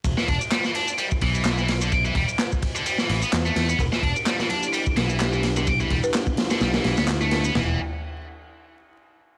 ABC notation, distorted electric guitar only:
X:1
M:4/4
L:1/16
Q:"Swing 16ths" 1/4=128
K:Em
V:1 name="Distorted electric guitar" clef=bass
z E, D z G, E, D z G, z E,3 E, z D, | z E, G, z4 D, G, E,2 B, z A,2 B, | z E, D z G, E, D z G, z E,3 E, z D, | z E, G, z4 D, G, E,2 B, z A,2 B, |
E,2 z12 z2 |]